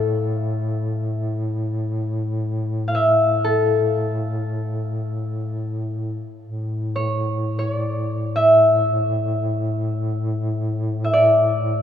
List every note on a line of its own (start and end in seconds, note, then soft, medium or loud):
0.00 6.26 A2 soft
0.00 1.90 A4 soft
0.00 0.23 E5 medium
2.88 3.01 F5 medium
2.95 4.67 E5 medium
3.44 5.94 A4 medium
6.43 11.82 A2 soft
6.96 7.59 C#5 medium
7.59 7.72 C#5 medium
7.72 9.43 D5 medium
8.36 11.03 E5 medium
11.04 11.82 E5 medium
11.13 11.82 D5 medium